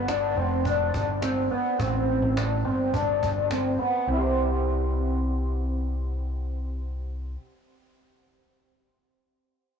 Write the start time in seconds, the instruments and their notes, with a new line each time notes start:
Already playing: picked electric bass G1
0.08 clean electric guitar D4, cajon slap
0.36 picked electric bass F1, clean electric guitar C4
0.65 clean electric guitar D4, cajon bass
0.94 picked electric bass G1, cajon bass
1.22 clean electric guitar C4, cajon slap
1.51 clean electric guitar B3
1.79 picked electric bass A1, clean electric guitar C4, cajon bass
2.22 picked electric bass A1
2.37 clean electric guitar D4, cajon slap
2.64 picked electric bass G1, clean electric guitar C4
2.93 picked electric bass G1, clean electric guitar D4, cajon bass
3.23 picked electric bass G1, cajon bass
3.51 clean electric guitar C4, cajon slap
3.79 clean electric guitar B3
4.07 picked electric bass C2, clean electric guitar C4
4.12 clean electric guitar E4
4.16 clean electric guitar G4 C5